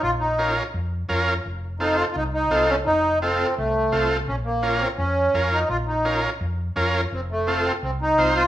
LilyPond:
<<
  \new Staff \with { instrumentName = "Transistor combo organ" } { \time 4/4 \key bes \minor \tempo 4 = 169 r4 <des' f' bes'>8 r4. <des' f' bes'>8 r8 | r4 <c' f' a'>8 r4. <c' f' a'>8 r8 | r4 <c' f' a'>8 r4. <c' f' a'>8 r8 | r4 <des' f' bes'>8 r4. <des' f' bes'>8 r8 |
r4 <des' f' bes'>8 r4. <des' f' bes'>8 r8 | r4 <c' f' a'>8 r4. <c' f' c''>8 r8 | }
  \new Staff \with { instrumentName = "Accordion" } { \time 4/4 \key bes \minor f'8 ees'4 r2 r8 | r4 ees'8 f'16. f'32 ees'8 ees'4 des'8 | ees'4 c'4 a4. r8 | des'8 bes4 c'8 des'4. ees'8 |
f'8 ees'4 r2 r8 | c'8 a4 c'8 c'8 ees'4 f'8 | }
  \new Staff \with { instrumentName = "Fingered electric bass" } { \clef bass \time 4/4 \key bes \minor bes,,2 f,4 f,4 | f,,2 c,4 c,4 | f,,2 c,4 c,4 | bes,,2 f,4 f,4 |
bes,,2 f,4 f,4 | f,,2 c,4 c,4 | }
>>